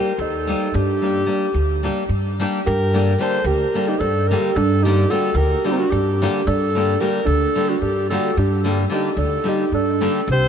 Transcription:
0.00 0.11 G3 medium
0.00 0.11 A#3 medium
0.00 0.12 D#4 soft
0.00 0.12 G4 medium
0.00 0.23 G4 medium
0.00 0.22 A#4 medium
0.18 0.52 D#2 loud
0.18 0.77 D#4 medium
0.18 0.77 A4 medium
0.47 0.67 G3 medium
0.47 0.67 A#3 medium
0.47 0.68 D#4 medium
0.47 0.68 G4 medium
0.74 1.22 G2 loud
0.74 2.10 D4 loud
0.74 2.10 G4 loud
1.02 1.21 G3 medium
1.02 1.21 A#3 medium
1.02 1.21 D4 medium
1.02 1.22 G4 medium
1.26 1.46 G3 medium
1.26 1.46 A#3 medium
1.26 1.46 D4 medium
1.26 1.47 G4 medium
1.54 1.88 D2 loud
1.83 2.02 G3 medium
1.83 2.02 A#3 medium
1.83 2.03 D4 medium
1.83 2.03 G4 medium
2.09 2.43 G2 medium
2.40 2.59 G3 medium
2.40 2.59 A#3 medium
2.40 2.59 D4 medium
2.40 2.60 G4 loud
2.66 3.14 G2 loud
2.66 3.24 G4 loud
2.66 3.22 A#4 loud
2.94 3.12 D3 medium
2.94 3.12 G3 medium
2.94 3.13 A#3 medium
2.94 3.13 D4 medium
2.94 3.13 G4 medium
3.18 3.37 D3 medium
3.18 3.38 G3 medium
3.18 3.38 A#3 medium
3.18 3.38 D4 medium
3.18 3.39 G4 medium
3.18 3.47 C5 medium
3.23 3.48 A4 medium
3.44 3.62 D2 loud
3.44 3.90 G4 medium
3.44 3.90 A#4 loud
3.74 3.93 D3 medium
3.74 3.94 G3 medium
3.74 3.94 A#3 medium
3.74 3.94 D4 medium
3.74 3.94 G4 medium
3.88 4.03 D#4 medium
3.88 4.01 G4 medium
3.99 4.34 G2 loud
3.99 4.35 D4 loud
3.99 4.30 A4 loud
4.28 4.50 D3 medium
4.28 4.50 G3 medium
4.28 4.50 A#3 medium
4.28 4.57 A#4 medium
4.33 4.50 D4 medium
4.33 4.50 G4 medium
4.33 4.59 G4 medium
4.55 5.03 G2 loud
4.55 4.84 D4 loud
4.55 4.85 A4 loud
4.83 5.03 D3 medium
4.83 5.04 G3 medium
4.83 5.04 A#3 medium
4.83 5.12 D#4 medium
4.83 5.12 G4 loud
4.87 5.04 D4 medium
4.87 5.04 G4 medium
5.10 5.28 D3 medium
5.10 5.29 G3 medium
5.10 5.29 A#3 medium
5.10 5.29 D4 medium
5.10 5.39 F#4 medium
5.10 5.30 G4 medium
5.10 5.38 A4 loud
5.34 5.52 D2 loud
5.34 5.66 G4 medium
5.34 5.66 A#4 loud
5.64 5.84 D3 medium
5.64 5.84 G3 medium
5.64 5.84 A#3 medium
5.64 5.84 D4 soft
5.64 5.74 D4 medium
5.64 5.72 F#4 medium
5.64 5.84 G4 medium
5.71 5.81 C4 medium
5.71 5.78 D#4 medium
5.77 5.92 D4 medium
5.77 5.92 F#4 loud
5.90 6.25 G2 loud
5.90 6.48 D4 medium
5.90 6.48 G4 medium
6.22 6.40 D3 medium
6.22 6.40 G3 medium
6.22 6.40 A#3 medium
6.22 6.41 D4 medium
6.22 6.41 G4 medium
6.47 6.94 G2 loud
6.47 7.02 D4 loud
6.47 7.02 A4 loud
6.75 6.93 D3 medium
6.75 6.93 G3 medium
6.75 6.94 A#3 medium
6.75 6.94 D4 medium
6.75 6.94 G4 medium
7.00 7.19 D3 medium
7.00 7.19 G3 medium
7.00 7.19 A#3 medium
7.00 7.19 D4 medium
7.00 7.27 G4 medium
7.00 7.19 G4 medium
7.00 7.28 A#4 medium
7.25 7.44 D2 loud
7.25 7.70 D4 medium
7.25 7.71 A4 loud
7.56 7.74 D3 medium
7.56 7.74 G3 medium
7.56 7.74 A#3 medium
7.56 7.75 D4 medium
7.56 7.75 G4 medium
7.70 7.83 D4 medium
7.70 7.82 F#4 medium
7.81 8.15 G2 medium
7.81 8.12 D4 medium
7.81 8.09 G4 medium
8.10 8.29 D3 medium
8.10 8.30 G3 medium
8.10 8.30 A#3 medium
8.10 8.30 D4 medium
8.10 8.41 F#4 medium
8.10 8.31 G4 medium
8.10 8.39 A4 medium
8.37 8.84 G2 loud
8.37 8.66 D4 medium
8.37 8.65 G4 medium
8.64 8.83 D3 medium
8.64 8.83 G3 medium
8.64 8.83 A#3 medium
8.64 8.83 D4 medium
8.64 8.84 G4 medium
8.90 9.08 D3 medium
8.90 9.08 G3 medium
8.90 9.09 A#3 medium
8.90 9.09 D4 medium
8.90 9.09 G4 medium
8.90 9.20 G4 medium
8.94 9.20 D#4 medium
9.17 9.34 D2 loud
9.17 9.50 D4 medium
9.17 9.49 A4 loud
9.44 9.63 D3 medium
9.44 9.63 G3 medium
9.44 9.64 A#3 medium
9.44 9.64 D4 medium
9.44 9.64 G4 medium
9.48 9.76 D#4 medium
9.48 9.76 G4 medium
9.72 10.05 G2 medium
9.72 10.28 D4 medium
9.72 10.28 A4 medium
10.01 10.19 D3 medium
10.01 10.20 G3 medium
10.01 10.20 A#3 medium
10.01 10.20 D4 medium
10.01 10.20 G4 medium
10.28 10.48 C2 loud
10.28 10.48 C5 loud
10.33 10.48 G4 loud

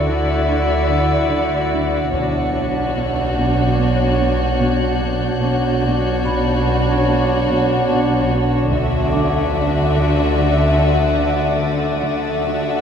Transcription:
0.00 2.10 D2 soft
0.00 2.10 D2 medium
0.00 2.10 D3 soft
0.00 2.09 E4 soft
0.00 2.10 F#4 soft
0.00 1.27 A4 soft
0.00 2.09 D5 soft
0.00 2.10 D5 soft
0.00 1.68 E5 soft
0.00 2.10 E5 soft
0.00 2.10 F#5 soft
0.00 2.16 C#6 soft
0.00 1.68 E6 soft
0.08 0.33 D3 soft
0.49 0.74 D4 soft
0.90 1.15 D3 soft
1.31 1.56 D3 soft
1.72 1.97 D3 soft
2.12 5.40 B1 medium
2.12 5.38 B1 soft
2.12 2.38 B2 soft
2.12 5.38 B2 soft
2.12 5.38 D4 soft
2.12 5.42 D4 soft
2.12 5.38 F#4 soft
2.12 5.39 F#4 soft
2.12 5.38 C#5 soft
2.12 5.42 C#5 soft
2.12 8.25 F#6 soft
2.12 taiko soft
2.54 2.79 B2 soft
2.95 3.20 B2 soft
2.95 8.26 G6 soft
3.36 3.61 B2 medium
3.78 4.03 B3 soft
4.18 4.43 B2 soft
4.60 4.85 B2 medium
5.01 5.26 B2 soft
5.41 8.67 B1 medium
5.41 8.68 B1 medium
5.41 5.67 B2 soft
5.41 8.68 B2 soft
5.41 8.67 D4 medium
5.41 8.68 D4 medium
5.41 8.67 F#4 medium
5.41 8.68 F#4 soft
5.41 8.67 C#5 soft
5.41 8.68 C#5 soft
5.84 6.08 B2 soft
6.25 6.50 B2 soft
6.25 8.67 B5 soft
6.66 6.91 B2 medium
7.08 7.32 B3 soft
7.48 7.73 B2 soft
7.89 8.14 B2 medium
8.30 8.55 B2 soft
8.71 11.99 D2 medium
8.71 11.96 D2 medium
8.71 8.96 D3 medium
8.71 11.96 D3 medium
8.71 11.98 D4 soft
8.71 11.96 D4 soft
8.71 11.96 F#4 soft
8.71 11.98 E5 medium
8.71 11.96 E5 soft
8.71 11.96 F#5 soft
8.71 12.81 D6 soft
8.71 12.81 D#6 soft
8.71 taiko soft
9.12 9.37 D3 soft
9.12 11.55 D6 soft
9.53 9.78 D3 soft
9.95 10.20 D3 soft
10.35 10.60 D4 soft
10.35 12.81 A6 soft
10.77 11.02 D3 soft
11.18 11.43 D3 soft
11.59 11.84 D3 soft
11.99 12.81 D2 soft
11.99 12.81 D2 medium
11.99 12.81 D3 soft
11.99 12.25 D3 soft
11.99 12.81 D4 soft
11.99 12.81 F#4 soft
11.99 12.81 E5 soft
11.99 12.81 F#5 soft
12.41 12.66 D3 soft

